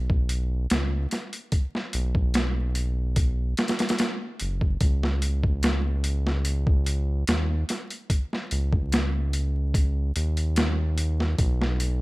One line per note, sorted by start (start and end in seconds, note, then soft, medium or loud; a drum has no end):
0.00 0.67 B1 loud
0.10 kick medium
0.29 closed hi-hat medium
0.70 1.07 C#2 medium
0.70 snare loud
0.70 closed hi-hat medium
1.11 snare soft
1.11 closed hi-hat medium
1.33 closed hi-hat soft
1.52 kick medium
1.52 closed hi-hat medium
1.75 snare soft
1.93 3.54 B1 loud
1.93 closed hi-hat medium
2.15 kick medium
2.34 snare loud
2.34 closed hi-hat medium
2.75 closed hi-hat medium
3.16 kick loud
3.16 closed hi-hat medium
3.57 snare medium
3.57 closed hi-hat medium
3.68 snare medium
3.68 closed hi-hat medium
3.79 snare medium
3.79 closed hi-hat medium
3.89 snare medium
3.89 closed hi-hat medium
3.98 snare loud
3.98 closed hi-hat medium
4.40 4.77 F#1 medium
4.40 closed hi-hat medium
4.61 kick medium
4.81 7.24 C#2 medium
4.81 kick loud
4.81 closed hi-hat medium
5.03 snare medium
5.22 closed hi-hat medium
5.43 kick medium
5.63 snare loud
5.63 closed hi-hat medium
6.04 closed hi-hat medium
6.27 snare soft
6.45 closed hi-hat medium
6.67 kick loud
6.86 closed hi-hat medium
7.27 7.64 D#2 medium
7.27 snare loud
7.27 closed hi-hat medium
7.69 snare soft
7.69 closed hi-hat medium
7.91 closed hi-hat soft
8.10 kick medium
8.10 closed hi-hat medium
8.33 snare soft
8.51 10.12 C#2 loud
8.51 closed hi-hat medium
8.73 kick loud
8.92 snare loud
8.92 closed hi-hat medium
9.33 closed hi-hat medium
9.74 kick loud
9.74 closed hi-hat medium
10.16 11.35 D#2 medium
10.16 closed hi-hat medium
10.37 closed hi-hat soft
10.56 snare loud
10.56 closed hi-hat medium
10.98 closed hi-hat medium
11.20 snare soft
11.39 12.02 B1 loud
11.39 kick loud
11.39 closed hi-hat medium
11.62 snare medium
11.80 closed hi-hat medium